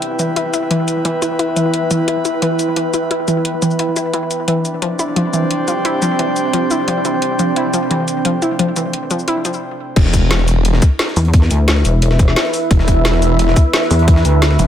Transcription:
Already playing: E4 B4 E5 G5
0.02 closed hi-hat
0.19 E3, closed hi-hat, cabasa
0.36 E4, closed hi-hat
0.54 E4, closed hi-hat, cabasa
0.71 E3, closed hi-hat
0.88 closed hi-hat, cabasa
1.05 E3, closed hi-hat
1.22 E4, closed hi-hat, cabasa
1.39 E4, closed hi-hat
1.56 E3, closed hi-hat, cabasa
1.74 closed hi-hat
1.91 E3, closed hi-hat, cabasa
2.08 E4, closed hi-hat
2.25 E4, closed hi-hat, cabasa
2.42 E3, closed hi-hat
2.59 closed hi-hat, cabasa
2.76 E3, closed hi-hat
2.94 E4, closed hi-hat, cabasa
3.11 E4, closed hi-hat
3.28 E3, closed hi-hat, cabasa
3.45 closed hi-hat
3.62 E3, closed hi-hat, cabasa
3.71 cabasa
3.79 E4, closed hi-hat
3.96 E4, closed hi-hat, cabasa
4.13 E3, closed hi-hat
4.31 closed hi-hat, cabasa
4.48 E3 C4 D4 G4 D5, closed hi-hat
4.65 closed hi-hat, cabasa
4.72 C5
4.82 F3, closed hi-hat
4.96 E4 G5, closed hi-hat, cabasa
5.16 F3, closed hi-hat
5.33 E3, closed hi-hat, cabasa
5.51 closed hi-hat
5.68 F3, closed hi-hat, cabasa
5.85 E4, closed hi-hat
6.02 F3, closed hi-hat, cabasa
6.19 E3, closed hi-hat
6.36 closed hi-hat, cabasa
6.53 F3, closed hi-hat
6.71 E4, closed hi-hat, cabasa
6.88 F3, closed hi-hat
7.05 E3, closed hi-hat, cabasa
7.22 A4, closed hi-hat
7.39 F3, closed hi-hat, cabasa
7.56 E4, closed hi-hat
7.74 F3, closed hi-hat, cabasa
7.91 E3, closed hi-hat
8.08 closed hi-hat, cabasa
8.25 F3, closed hi-hat
8.42 E4, closed hi-hat, cabasa
8.59 F3, closed hi-hat
8.76 E3, closed hi-hat, cabasa
8.93 closed hi-hat
9.11 F3, closed hi-hat, cabasa
9.19 cabasa
9.28 E4, closed hi-hat
9.45 F3, closed hi-hat, cabasa
9.53 cabasa
9.96 E1 E4 B4 E5, kick, closed hi-hat, crash
10.05 snare
10.13 kick, closed hi-hat, cabasa
10.31 snare, closed hi-hat
10.39 snare
10.48 closed hi-hat, cabasa
10.65 closed hi-hat
10.73 snare
10.82 kick, closed hi-hat, cabasa
10.99 snare, closed hi-hat
11.08 snare
11.16 E2, closed hi-hat, open hi-hat, cabasa
11.25 closed hi-hat
11.33 kick, closed hi-hat
11.42 snare
11.51 D2, closed hi-hat, cabasa
11.68 snare, closed hi-hat
11.76 snare
11.85 E1, closed hi-hat, cabasa
12.02 closed hi-hat
12.11 snare
12.19 kick, closed hi-hat, cabasa
12.28 snare
12.36 snare, closed hi-hat
12.45 snare
12.54 closed hi-hat, open hi-hat, cabasa
12.71 E1, kick, closed hi-hat
12.79 snare
12.88 kick, closed hi-hat, cabasa
13.05 snare, closed hi-hat
13.14 snare
13.22 closed hi-hat, cabasa
13.39 closed hi-hat
13.48 snare
13.56 kick, closed hi-hat, cabasa
13.73 snare, closed hi-hat
13.82 snare
13.91 E2, closed hi-hat, open hi-hat, cabasa
13.99 closed hi-hat
14.08 kick, closed hi-hat
14.16 snare
14.25 D2, closed hi-hat, cabasa
14.42 snare, closed hi-hat
14.51 snare
14.59 F1, closed hi-hat, cabasa

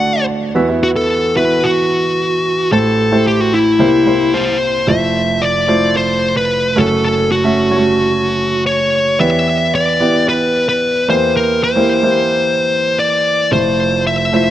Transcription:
Already playing: D2 D3 A3 D4 F#4 D5 F#5
0.55 E2 E3 B3 E4 F#4 E5
0.68 B3 E4 F#4 E5
0.83 F#4
0.96 A4
1.36 B3 E4 F#4 B4 E5
1.64 F#4
2.71 A1 A2 A3 E4 G4 A4 C5
3.11 A3 E4 G4 C5
3.27 G4
3.41 F#4
3.54 E4
3.79 C2 C3 A#3 E4 G4 C5
4.06 A#3 E4 G4 C5
4.34 C5
4.87 F1 F2 A3 E4 F4 C5 E5
5.42 D5
5.68 A3 E4 F4 C5
5.97 C5
6.37 B4
6.76 F#1 F#2 A3 C#4 F#4 A4 C#5
7.05 A4
7.32 F#4
7.44 A3 C#4 F#4 E5
7.70 G3 C#4 F#4 C#5
7.76 A3
8.67 C#5
9.19 E2 E3 B3 E4 G4 D5 E5
9.75 D5
10.00 B3 E4 G4 D5
10.29 B4
10.69 B4
11.08 E2 E3 A#3 E4 G4 C5
11.37 A#4
11.64 C5
11.76 A#3 E4 G4 C5
12.03 A#3 E4 G4 C5
12.99 D5
13.52 F1 F2 A3 E4 F4 C5
14.07 E5
14.32 A3 E4 F4 C5

